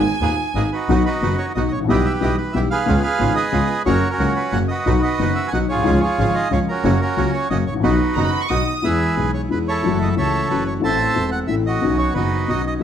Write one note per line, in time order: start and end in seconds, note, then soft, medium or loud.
0.00 0.68 G#5 medium
0.21 0.35 D#1 medium
0.21 0.35 D#2 medium
0.21 0.36 A#3 soft
0.21 0.36 B3 soft
0.21 0.36 G#4 medium
0.54 0.69 G#1 medium
0.54 0.69 G#2 medium
0.54 0.69 A#3 soft
0.54 0.69 B3 soft
0.54 0.70 G#4 soft
0.54 0.63 D#5 medium
0.73 1.05 D#4 soft
0.73 1.05 F#4 soft
0.73 1.03 B4 medium
0.89 1.03 B1 medium
0.89 1.03 B2 medium
0.89 1.03 D#3 medium
0.89 1.03 F#3 medium
0.89 1.03 B3 medium
0.89 1.03 B3 soft
0.89 1.03 D#4 medium
0.89 1.03 F#4 medium
1.05 1.53 D#4 medium
1.05 1.52 F#4 medium
1.05 1.37 B4 medium
1.22 1.36 F#1 medium
1.22 1.37 F#1 soft
1.22 1.37 F#2 soft
1.22 1.36 D#3 soft
1.22 1.36 F#3 soft
1.22 1.36 B3 soft
1.22 1.36 D#4 soft
1.22 1.36 F#4 soft
1.22 1.37 F#4 soft
1.38 1.46 C#5 medium
1.55 1.70 B1 medium
1.55 1.70 B1 soft
1.55 1.70 B2 soft
1.55 1.69 D#3 soft
1.55 1.70 F#3 soft
1.55 1.70 B3 soft
1.55 1.70 D#4 soft
1.55 1.70 F#4 soft
1.55 1.61 D#5 medium
1.68 1.79 C#5 medium
1.68 1.72 D#5 medium
1.73 1.80 G#1 soft
1.73 1.88 A1 soft
1.80 1.85 A1 medium
1.84 1.89 A#1 medium
1.84 2.02 B1 medium
1.84 2.02 B2 medium
1.84 2.02 E3 medium
1.84 2.02 G3 medium
1.88 2.03 B1 medium
1.88 2.02 B3 medium
1.88 2.03 B3 medium
1.88 2.03 E4 medium
1.88 2.03 G4 medium
1.88 2.36 G4 medium
1.88 2.36 B4 medium
1.88 2.06 D#5 medium
2.05 2.13 E5 medium
2.21 2.35 B1 medium
2.21 2.36 B1 medium
2.21 2.36 B2 medium
2.21 2.35 E3 soft
2.21 2.35 G3 soft
2.21 2.35 B3 soft
2.21 2.36 B3 soft
2.21 2.36 E4 soft
2.21 2.36 G4 soft
2.21 2.37 D#5 medium
2.37 2.55 B4 medium
2.53 2.68 B1 soft
2.53 2.69 B1 medium
2.53 2.68 B2 medium
2.53 2.68 E3 soft
2.53 2.68 G3 soft
2.53 2.68 B3 soft
2.53 2.69 B3 soft
2.53 2.69 E4 soft
2.53 2.68 G4 soft
2.53 2.69 G4 soft
2.53 2.60 E5 medium
2.70 3.02 G#4 medium
2.70 3.02 B4 medium
2.70 3.00 F5 medium
2.86 3.01 C#2 medium
2.86 3.02 C#2 medium
2.86 3.01 C#3 medium
2.86 3.01 G#3 medium
2.86 3.01 B3 medium
2.86 3.02 C#4 medium
2.86 3.01 F4 medium
2.86 3.02 F4 medium
3.01 3.35 G#4 medium
3.01 3.35 B4 medium
3.01 3.33 F5 medium
3.18 3.33 G#1 medium
3.18 3.34 G#1 medium
3.18 3.33 G#2 soft
3.18 3.33 C#3 soft
3.18 3.33 G#3 soft
3.18 3.33 B3 soft
3.18 3.34 B3 soft
3.18 3.34 C#4 soft
3.18 3.33 F4 soft
3.18 3.34 F4 medium
3.35 3.83 G#4 medium
3.35 3.83 B4 medium
3.35 3.82 D#5 medium
3.52 3.67 C#2 medium
3.52 3.67 C#3 soft
3.52 3.67 G#3 soft
3.52 3.66 B3 soft
3.52 3.67 B3 soft
3.52 3.67 C#4 soft
3.52 3.67 F4 soft
3.85 4.00 F#1 medium
3.85 4.00 F#2 medium
3.85 4.00 C#3 medium
3.85 4.00 F#3 medium
3.85 4.00 A#3 medium
3.85 4.00 C#4 medium
3.85 4.00 F#4 medium
3.85 4.11 F#4 medium
3.85 4.08 A#4 medium
3.85 4.09 C#5 medium
4.10 4.58 C#4 medium
4.10 4.58 F#4 medium
4.10 4.34 A#4 medium
4.19 4.33 C#2 medium
4.19 4.34 C#2 soft
4.19 4.34 C#3 soft
4.19 4.34 F#3 soft
4.19 4.33 A#3 soft
4.19 4.34 A#3 soft
4.19 4.33 C#4 soft
4.19 4.33 F#4 soft
4.19 4.34 F#4 soft
4.36 4.53 B4 medium
4.52 4.67 F#1 medium
4.52 4.67 F#2 soft
4.52 4.67 C#3 soft
4.52 4.67 F#3 soft
4.52 4.66 A#3 soft
4.52 4.67 A#3 soft
4.52 4.67 C#4 soft
4.52 4.67 F#4 soft
4.52 4.59 F#5 medium
4.68 5.02 F#4 medium
4.68 5.02 B4 medium
4.68 5.00 D#5 medium
4.86 5.00 B1 medium
4.86 5.00 B2 medium
4.86 5.00 D#3 medium
4.86 5.00 F#3 medium
4.86 5.00 B3 medium
4.86 5.00 D#4 medium
4.86 5.00 F#4 medium
5.02 5.50 F#4 medium
5.02 5.50 B4 medium
5.02 5.33 D#5 medium
5.19 5.34 F#1 medium
5.19 5.34 F#2 soft
5.19 5.34 D#3 soft
5.19 5.34 F#3 soft
5.19 5.34 B3 soft
5.19 5.34 D#4 soft
5.19 5.34 F#4 soft
5.19 5.34 F#4 medium
5.35 5.47 E5 medium
5.48 5.59 F#5 medium
5.48 5.52 G#5 medium
5.52 5.67 B1 medium
5.52 5.67 B2 soft
5.52 5.67 D#3 soft
5.52 5.67 F#3 soft
5.52 5.66 B3 soft
5.52 5.67 B3 soft
5.52 5.67 D#4 soft
5.52 5.67 F#4 soft
5.69 5.85 B1 soft
5.69 6.02 F4 medium
5.69 6.01 G#4 medium
5.69 5.99 C#5 medium
5.74 5.78 A#1 soft
5.79 5.82 B1 medium
5.79 5.86 C2 medium
5.85 5.99 C#2 medium
5.85 5.99 C#3 medium
5.85 5.99 F3 medium
5.85 5.99 G#3 medium
5.85 5.99 C#4 medium
5.85 5.99 F4 medium
5.85 6.00 F4 medium
6.01 6.49 F4 medium
6.01 6.48 G#4 medium
6.01 6.35 C#5 medium
6.18 6.32 G#1 medium
6.18 6.33 G#1 medium
6.18 6.32 G#2 medium
6.18 6.32 C#3 soft
6.18 6.32 F3 soft
6.18 6.33 G#3 soft
6.18 6.33 C#4 soft
6.18 6.33 F4 soft
6.18 6.33 F4 medium
6.35 6.52 D#5 medium
6.51 6.65 C#2 medium
6.51 6.65 C#3 medium
6.51 6.65 F3 soft
6.51 6.65 G#3 soft
6.51 6.65 C#4 soft
6.51 6.65 F4 soft
6.51 6.66 F4 soft
6.51 6.59 C#5 medium
6.69 7.01 C#4 medium
6.69 7.01 F#4 medium
6.69 6.99 A#4 medium
6.84 6.98 F#1 medium
6.84 6.98 F#2 medium
6.84 6.98 C#3 medium
6.84 6.98 F#3 medium
6.84 6.98 A#3 medium
6.84 6.98 C#4 medium
6.84 6.98 F#4 medium
7.00 7.47 C#4 medium
7.00 7.48 F#4 medium
7.00 7.31 A#4 medium
7.17 7.31 C#2 medium
7.17 7.31 C#3 medium
7.17 7.31 F#3 soft
7.17 7.31 A#3 soft
7.17 7.31 C#4 soft
7.17 7.31 F#4 medium
7.33 7.49 C#5 medium
7.50 7.64 F#1 medium
7.50 7.64 F#2 medium
7.50 7.64 C#3 soft
7.50 7.65 F#3 soft
7.50 7.64 A#3 soft
7.50 7.65 A#3 soft
7.50 7.65 C#4 soft
7.50 7.65 F#4 soft
7.50 7.57 D#5 medium
7.66 7.82 A1 soft
7.66 7.74 C#5 medium
7.71 7.75 G#1 soft
7.71 7.79 A1 medium
7.80 7.84 A#1 medium
7.80 7.97 B1 medium
7.80 7.97 B2 medium
7.80 7.97 D#3 medium
7.80 7.97 F#3 medium
7.80 7.97 B3 medium
7.80 7.97 D#4 medium
7.80 7.97 F#4 medium
7.80 8.46 B4 medium
7.84 8.47 D#4 medium
7.84 7.97 F#4 medium
7.84 8.47 F#4 medium
8.14 8.31 F#1 medium
8.14 8.31 F#1 soft
8.14 8.31 F#2 soft
8.14 8.31 D#3 soft
8.14 8.31 F#3 soft
8.14 8.31 B3 soft
8.14 8.31 D#4 soft
8.14 8.31 F#4 soft
8.14 8.31 F#4 medium
8.14 8.23 A#5 medium
8.24 8.42 B5 medium
8.40 8.50 C#6 medium
8.49 8.65 B1 medium
8.49 8.65 B2 medium
8.49 8.64 D#3 soft
8.49 8.65 F#3 soft
8.49 8.64 B3 soft
8.49 8.65 B3 soft
8.49 8.64 D#4 soft
8.49 8.64 F#4 soft
8.49 8.65 F#4 soft
8.49 8.65 D#5 medium
8.49 8.84 D#6 medium
8.67 8.75 D#5 medium
8.82 9.16 E2 soft
8.82 9.16 E2 medium
8.82 8.83 E3 soft
8.82 9.14 E3 medium
8.82 9.15 G#3 soft
8.82 9.16 B3 soft
8.82 9.16 E4 soft
8.82 9.16 G#4 medium
8.82 9.31 G#4 medium
8.82 9.31 B4 medium
8.82 9.15 E5 medium
8.86 9.17 G#4 medium
9.15 9.49 B1 soft
9.15 9.49 B2 soft
9.15 9.47 E3 soft
9.15 9.48 G#3 soft
9.15 9.49 B3 soft
9.15 9.50 B3 soft
9.15 9.49 E4 soft
9.15 9.49 G#4 soft
9.19 9.50 G#4 soft
9.34 9.42 C#5 medium
9.48 9.82 E2 soft
9.48 9.83 E2 soft
9.48 9.50 E3 soft
9.48 9.81 E3 soft
9.48 9.82 G#3 soft
9.48 9.83 B3 soft
9.48 9.82 E4 soft
9.48 9.83 G#4 soft
9.48 9.59 B4 medium
9.52 9.83 G#4 soft
9.68 10.15 E4 soft
9.68 10.15 A4 soft
9.68 9.99 C#5 medium
9.82 10.16 F#1 medium
9.82 10.16 F#2 medium
9.82 10.14 E3 soft
9.82 10.16 F#3 medium
9.82 10.15 A3 soft
9.82 10.16 A3 medium
9.82 10.16 C#4 soft
9.82 10.15 E4 medium
9.82 10.16 F#4 medium
9.86 10.17 F#4 medium
10.02 10.09 D#5 medium
10.15 10.48 C#2 soft
10.15 10.49 C#2 soft
10.15 10.49 C#3 soft
10.15 10.46 E3 soft
10.15 10.48 A3 soft
10.15 10.49 C#4 soft
10.15 10.48 E4 soft
10.15 10.48 F#4 soft
10.15 10.49 F#4 soft
10.15 10.64 A4 medium
10.15 10.64 C#5 medium
10.15 10.48 E5 medium
10.48 10.82 F#1 soft
10.48 10.81 F#2 soft
10.48 10.78 E3 soft
10.48 10.81 F#3 soft
10.48 10.81 A3 soft
10.48 10.79 A3 soft
10.48 10.82 C#4 soft
10.48 10.81 E4 soft
10.48 10.81 F#4 soft
10.48 10.82 F#4 soft
10.48 10.67 B4 medium
10.67 10.74 C#5 medium
10.80 11.14 A1 medium
10.80 11.15 A1 medium
10.80 11.14 A2 medium
10.80 11.12 E3 soft
10.80 11.13 A3 soft
10.80 11.14 A3 medium
10.80 11.14 C4 soft
10.80 11.14 C4 medium
10.80 11.14 E4 medium
10.84 11.15 A4 medium
10.84 11.30 C5 medium
10.84 11.30 E5 medium
10.84 11.29 A5 medium
11.13 11.47 E1 soft
11.13 11.48 E1 soft
11.13 11.47 E2 soft
11.13 11.46 E3 soft
11.13 11.47 A3 soft
11.13 11.47 C4 soft
11.13 11.48 C4 soft
11.13 11.47 E4 soft
11.18 11.48 A4 soft
11.32 11.39 F#5 medium
11.47 11.81 A1 medium
11.47 11.81 A1 soft
11.47 11.80 A2 soft
11.47 11.80 E3 soft
11.47 11.80 A3 soft
11.47 11.81 A3 soft
11.47 11.81 C4 soft
11.47 11.81 E4 soft
11.47 11.81 A4 soft
11.47 11.55 E5 medium
11.66 12.14 F#4 medium
11.66 11.97 D#5 medium
11.80 12.14 B1 medium
11.80 12.14 B2 medium
11.80 12.11 D#3 medium
11.80 12.13 B3 soft
11.80 12.14 B3 medium
11.80 12.14 C#4 medium
11.80 12.14 C#4 soft
11.80 12.14 D#4 medium
11.80 12.15 F#4 medium
11.98 12.14 C#5 medium
12.13 12.47 F#1 soft
12.13 12.47 F#2 soft
12.13 12.45 D#3 soft
12.13 12.46 B3 soft
12.13 12.47 B3 soft
12.13 12.47 C#4 soft
12.13 12.47 D#4 soft
12.13 12.63 D#4 medium
12.13 12.62 F#4 medium
12.13 12.49 B4 medium
12.17 12.48 F#4 soft
12.46 12.80 B1 soft
12.46 12.81 B1 soft
12.46 12.81 B2 soft
12.46 12.79 D#3 soft
12.46 12.80 B3 soft
12.46 12.81 B3 soft
12.46 12.81 C#4 soft
12.46 12.81 D#4 soft
12.46 12.81 F#4 soft
12.46 12.65 D#5 medium
12.67 12.74 D#5 medium
12.80 12.83 F#3 soft